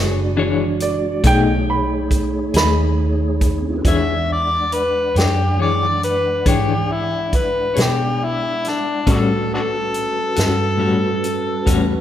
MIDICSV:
0, 0, Header, 1, 7, 480
1, 0, Start_track
1, 0, Tempo, 868307
1, 2133, Time_signature, 12, 3, 24, 8
1, 6637, End_track
2, 0, Start_track
2, 0, Title_t, "Upright piano"
2, 0, Program_c, 0, 0
2, 0, Note_on_c, 0, 71, 77
2, 0, Note_on_c, 0, 80, 100
2, 190, Note_off_c, 0, 71, 0
2, 192, Note_off_c, 0, 80, 0
2, 454, Note_on_c, 0, 74, 78
2, 685, Note_off_c, 0, 74, 0
2, 701, Note_on_c, 0, 79, 99
2, 929, Note_off_c, 0, 79, 0
2, 939, Note_on_c, 0, 83, 78
2, 1402, Note_off_c, 0, 83, 0
2, 1419, Note_on_c, 0, 83, 96
2, 1648, Note_off_c, 0, 83, 0
2, 6637, End_track
3, 0, Start_track
3, 0, Title_t, "Harmonica"
3, 0, Program_c, 1, 22
3, 2144, Note_on_c, 1, 76, 66
3, 2372, Note_off_c, 1, 76, 0
3, 2391, Note_on_c, 1, 74, 68
3, 2617, Note_on_c, 1, 71, 73
3, 2625, Note_off_c, 1, 74, 0
3, 2848, Note_off_c, 1, 71, 0
3, 2861, Note_on_c, 1, 67, 62
3, 3091, Note_off_c, 1, 67, 0
3, 3103, Note_on_c, 1, 74, 64
3, 3332, Note_off_c, 1, 74, 0
3, 3340, Note_on_c, 1, 71, 62
3, 3570, Note_off_c, 1, 71, 0
3, 3583, Note_on_c, 1, 67, 64
3, 3828, Note_on_c, 1, 64, 65
3, 3837, Note_off_c, 1, 67, 0
3, 4070, Note_on_c, 1, 71, 63
3, 4079, Note_off_c, 1, 64, 0
3, 4296, Note_off_c, 1, 71, 0
3, 4319, Note_on_c, 1, 67, 69
3, 4558, Note_on_c, 1, 64, 86
3, 4567, Note_off_c, 1, 67, 0
3, 4801, Note_on_c, 1, 62, 71
3, 4809, Note_off_c, 1, 64, 0
3, 5021, Note_off_c, 1, 62, 0
3, 5033, Note_on_c, 1, 62, 51
3, 5033, Note_on_c, 1, 66, 51
3, 5033, Note_on_c, 1, 69, 73
3, 5072, Note_off_c, 1, 66, 0
3, 5082, Note_off_c, 1, 62, 0
3, 5257, Note_off_c, 1, 69, 0
3, 5275, Note_on_c, 1, 62, 69
3, 5275, Note_on_c, 1, 66, 69
3, 5275, Note_on_c, 1, 69, 98
3, 5309, Note_off_c, 1, 66, 0
3, 5312, Note_off_c, 1, 62, 0
3, 6637, Note_off_c, 1, 69, 0
3, 6637, End_track
4, 0, Start_track
4, 0, Title_t, "Tonewheel organ"
4, 0, Program_c, 2, 16
4, 0, Note_on_c, 2, 56, 60
4, 0, Note_on_c, 2, 62, 53
4, 0, Note_on_c, 2, 66, 65
4, 0, Note_on_c, 2, 74, 57
4, 677, Note_off_c, 2, 56, 0
4, 680, Note_off_c, 2, 62, 0
4, 680, Note_off_c, 2, 66, 0
4, 682, Note_off_c, 2, 74, 0
4, 688, Note_on_c, 2, 73, 61
4, 692, Note_on_c, 2, 63, 72
4, 693, Note_on_c, 2, 68, 70
4, 698, Note_on_c, 2, 57, 70
4, 1959, Note_off_c, 2, 57, 0
4, 1966, Note_on_c, 2, 57, 42
4, 1986, Note_on_c, 2, 59, 47
4, 1995, Note_on_c, 2, 60, 44
4, 2013, Note_on_c, 2, 62, 40
4, 2028, Note_on_c, 2, 64, 47
4, 2044, Note_on_c, 2, 65, 39
4, 2066, Note_on_c, 2, 67, 44
4, 2078, Note_on_c, 2, 69, 42
4, 2083, Note_on_c, 2, 71, 47
4, 2106, Note_on_c, 2, 72, 47
4, 2107, Note_off_c, 2, 57, 0
4, 2117, Note_off_c, 2, 59, 0
4, 2117, Note_off_c, 2, 73, 0
4, 2119, Note_off_c, 2, 63, 0
4, 2120, Note_off_c, 2, 68, 0
4, 2122, Note_off_c, 2, 60, 0
4, 2122, Note_on_c, 2, 74, 46
4, 2128, Note_off_c, 2, 62, 0
4, 2135, Note_on_c, 2, 56, 43
4, 2135, Note_on_c, 2, 62, 48
4, 2138, Note_off_c, 2, 64, 0
4, 2143, Note_on_c, 2, 78, 48
4, 2146, Note_off_c, 2, 65, 0
4, 2157, Note_off_c, 2, 67, 0
4, 2163, Note_off_c, 2, 69, 0
4, 2166, Note_off_c, 2, 71, 0
4, 2177, Note_off_c, 2, 72, 0
4, 4994, Note_off_c, 2, 56, 0
4, 4994, Note_off_c, 2, 62, 0
4, 4995, Note_off_c, 2, 74, 0
4, 4998, Note_off_c, 2, 78, 0
4, 5024, Note_on_c, 2, 61, 52
4, 5028, Note_on_c, 2, 66, 47
4, 5028, Note_on_c, 2, 71, 52
4, 5029, Note_on_c, 2, 55, 50
4, 6637, Note_off_c, 2, 55, 0
4, 6637, Note_off_c, 2, 61, 0
4, 6637, Note_off_c, 2, 66, 0
4, 6637, Note_off_c, 2, 71, 0
4, 6637, End_track
5, 0, Start_track
5, 0, Title_t, "Clean electric guitar"
5, 0, Program_c, 3, 27
5, 0, Note_on_c, 3, 62, 40
5, 0, Note_on_c, 3, 68, 44
5, 0, Note_on_c, 3, 73, 51
5, 108, Note_off_c, 3, 73, 0
5, 113, Note_off_c, 3, 68, 0
5, 115, Note_off_c, 3, 62, 0
5, 202, Note_on_c, 3, 52, 66
5, 205, Note_on_c, 3, 62, 76
5, 212, Note_on_c, 3, 68, 68
5, 218, Note_on_c, 3, 73, 76
5, 350, Note_off_c, 3, 52, 0
5, 351, Note_off_c, 3, 62, 0
5, 355, Note_off_c, 3, 68, 0
5, 358, Note_off_c, 3, 73, 0
5, 684, Note_on_c, 3, 47, 73
5, 685, Note_on_c, 3, 57, 75
5, 695, Note_on_c, 3, 63, 81
5, 695, Note_on_c, 3, 68, 93
5, 832, Note_off_c, 3, 47, 0
5, 832, Note_off_c, 3, 57, 0
5, 837, Note_off_c, 3, 63, 0
5, 837, Note_off_c, 3, 68, 0
5, 1404, Note_on_c, 3, 68, 50
5, 1412, Note_on_c, 3, 63, 48
5, 1421, Note_on_c, 3, 57, 38
5, 1552, Note_off_c, 3, 68, 0
5, 1556, Note_off_c, 3, 63, 0
5, 1561, Note_off_c, 3, 57, 0
5, 2135, Note_on_c, 3, 52, 54
5, 2137, Note_on_c, 3, 62, 63
5, 2137, Note_on_c, 3, 68, 69
5, 2145, Note_on_c, 3, 73, 62
5, 2278, Note_off_c, 3, 52, 0
5, 2279, Note_off_c, 3, 62, 0
5, 2279, Note_off_c, 3, 68, 0
5, 2283, Note_off_c, 3, 73, 0
5, 2844, Note_on_c, 3, 73, 39
5, 2853, Note_on_c, 3, 68, 36
5, 2859, Note_on_c, 3, 62, 29
5, 2993, Note_off_c, 3, 73, 0
5, 2997, Note_off_c, 3, 68, 0
5, 3000, Note_off_c, 3, 62, 0
5, 3083, Note_on_c, 3, 52, 50
5, 3089, Note_on_c, 3, 62, 50
5, 3091, Note_on_c, 3, 68, 54
5, 3096, Note_on_c, 3, 73, 57
5, 3233, Note_off_c, 3, 52, 0
5, 3236, Note_off_c, 3, 62, 0
5, 3237, Note_off_c, 3, 68, 0
5, 3239, Note_off_c, 3, 73, 0
5, 3566, Note_on_c, 3, 52, 60
5, 3570, Note_on_c, 3, 62, 64
5, 3572, Note_on_c, 3, 68, 70
5, 3578, Note_on_c, 3, 73, 77
5, 3714, Note_off_c, 3, 52, 0
5, 3717, Note_off_c, 3, 62, 0
5, 3718, Note_off_c, 3, 68, 0
5, 3720, Note_off_c, 3, 73, 0
5, 4280, Note_on_c, 3, 73, 43
5, 4288, Note_on_c, 3, 68, 40
5, 4293, Note_on_c, 3, 62, 34
5, 4431, Note_off_c, 3, 73, 0
5, 4435, Note_off_c, 3, 68, 0
5, 4438, Note_off_c, 3, 62, 0
5, 5011, Note_on_c, 3, 45, 61
5, 5013, Note_on_c, 3, 61, 69
5, 5016, Note_on_c, 3, 55, 67
5, 5023, Note_on_c, 3, 66, 63
5, 5157, Note_off_c, 3, 45, 0
5, 5158, Note_off_c, 3, 61, 0
5, 5159, Note_off_c, 3, 55, 0
5, 5163, Note_off_c, 3, 66, 0
5, 5727, Note_on_c, 3, 66, 41
5, 5735, Note_on_c, 3, 61, 40
5, 5743, Note_on_c, 3, 55, 34
5, 5874, Note_off_c, 3, 66, 0
5, 5879, Note_off_c, 3, 61, 0
5, 5882, Note_off_c, 3, 55, 0
5, 5955, Note_on_c, 3, 45, 59
5, 5961, Note_on_c, 3, 55, 59
5, 5966, Note_on_c, 3, 61, 62
5, 5971, Note_on_c, 3, 66, 67
5, 6108, Note_off_c, 3, 45, 0
5, 6111, Note_off_c, 3, 55, 0
5, 6114, Note_off_c, 3, 61, 0
5, 6116, Note_off_c, 3, 66, 0
5, 6443, Note_on_c, 3, 45, 77
5, 6445, Note_on_c, 3, 55, 70
5, 6446, Note_on_c, 3, 61, 79
5, 6452, Note_on_c, 3, 66, 85
5, 6592, Note_off_c, 3, 45, 0
5, 6593, Note_off_c, 3, 55, 0
5, 6593, Note_off_c, 3, 61, 0
5, 6596, Note_off_c, 3, 66, 0
5, 6637, End_track
6, 0, Start_track
6, 0, Title_t, "Fingered electric bass"
6, 0, Program_c, 4, 33
6, 0, Note_on_c, 4, 30, 90
6, 670, Note_off_c, 4, 30, 0
6, 686, Note_on_c, 4, 35, 77
6, 1388, Note_off_c, 4, 35, 0
6, 1403, Note_on_c, 4, 39, 94
6, 2107, Note_off_c, 4, 39, 0
6, 2128, Note_on_c, 4, 40, 68
6, 2830, Note_off_c, 4, 40, 0
6, 2850, Note_on_c, 4, 42, 71
6, 3551, Note_off_c, 4, 42, 0
6, 3575, Note_on_c, 4, 44, 60
6, 4274, Note_off_c, 4, 44, 0
6, 4297, Note_on_c, 4, 47, 78
6, 4995, Note_off_c, 4, 47, 0
6, 5013, Note_on_c, 4, 45, 70
6, 5712, Note_off_c, 4, 45, 0
6, 5737, Note_on_c, 4, 43, 75
6, 6433, Note_off_c, 4, 43, 0
6, 6451, Note_on_c, 4, 40, 66
6, 6637, Note_off_c, 4, 40, 0
6, 6637, End_track
7, 0, Start_track
7, 0, Title_t, "Drums"
7, 444, Note_on_c, 9, 42, 51
7, 499, Note_off_c, 9, 42, 0
7, 684, Note_on_c, 9, 36, 79
7, 684, Note_on_c, 9, 42, 78
7, 739, Note_off_c, 9, 36, 0
7, 740, Note_off_c, 9, 42, 0
7, 1165, Note_on_c, 9, 36, 74
7, 1168, Note_on_c, 9, 42, 59
7, 1220, Note_off_c, 9, 36, 0
7, 1223, Note_off_c, 9, 42, 0
7, 1404, Note_on_c, 9, 42, 76
7, 1418, Note_on_c, 9, 38, 107
7, 1459, Note_off_c, 9, 42, 0
7, 1473, Note_off_c, 9, 38, 0
7, 1886, Note_on_c, 9, 36, 72
7, 1886, Note_on_c, 9, 42, 60
7, 1942, Note_off_c, 9, 36, 0
7, 1942, Note_off_c, 9, 42, 0
7, 2127, Note_on_c, 9, 36, 79
7, 2128, Note_on_c, 9, 42, 69
7, 2182, Note_off_c, 9, 36, 0
7, 2183, Note_off_c, 9, 42, 0
7, 2610, Note_on_c, 9, 42, 44
7, 2665, Note_off_c, 9, 42, 0
7, 2853, Note_on_c, 9, 42, 64
7, 2867, Note_on_c, 9, 38, 80
7, 2908, Note_off_c, 9, 42, 0
7, 2922, Note_off_c, 9, 38, 0
7, 3334, Note_on_c, 9, 42, 49
7, 3389, Note_off_c, 9, 42, 0
7, 3571, Note_on_c, 9, 36, 74
7, 3571, Note_on_c, 9, 42, 69
7, 3626, Note_off_c, 9, 36, 0
7, 3626, Note_off_c, 9, 42, 0
7, 4051, Note_on_c, 9, 36, 64
7, 4051, Note_on_c, 9, 42, 47
7, 4106, Note_off_c, 9, 42, 0
7, 4107, Note_off_c, 9, 36, 0
7, 4292, Note_on_c, 9, 42, 67
7, 4306, Note_on_c, 9, 38, 91
7, 4347, Note_off_c, 9, 42, 0
7, 4361, Note_off_c, 9, 38, 0
7, 4779, Note_on_c, 9, 42, 45
7, 4794, Note_on_c, 9, 38, 25
7, 4835, Note_off_c, 9, 42, 0
7, 4849, Note_off_c, 9, 38, 0
7, 5013, Note_on_c, 9, 36, 84
7, 5013, Note_on_c, 9, 42, 67
7, 5069, Note_off_c, 9, 36, 0
7, 5069, Note_off_c, 9, 42, 0
7, 5496, Note_on_c, 9, 42, 46
7, 5551, Note_off_c, 9, 42, 0
7, 5729, Note_on_c, 9, 42, 63
7, 5743, Note_on_c, 9, 38, 79
7, 5784, Note_off_c, 9, 42, 0
7, 5798, Note_off_c, 9, 38, 0
7, 6212, Note_on_c, 9, 42, 51
7, 6268, Note_off_c, 9, 42, 0
7, 6450, Note_on_c, 9, 36, 70
7, 6451, Note_on_c, 9, 42, 81
7, 6505, Note_off_c, 9, 36, 0
7, 6507, Note_off_c, 9, 42, 0
7, 6637, End_track
0, 0, End_of_file